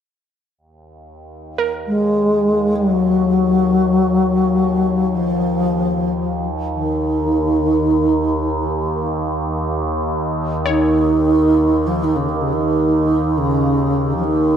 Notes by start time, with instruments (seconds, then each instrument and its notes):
0.58 synth drone D#2
1.58 synth pluck A#4
1.87 bass flute G#3
2.76 bass flute F#3
5.16 bass flute F3
6.76 bass flute D#3
10.66 bass flute D#3, synth pluck C#5
11.87 bass flute F3
12.04 bass flute D#3
12.16 bass flute C#3
12.29 bass flute D#3
12.41 bass flute C#3
12.53 bass flute D#3
13.38 bass flute C#3
14.16 bass flute F3
14.24 bass flute D#3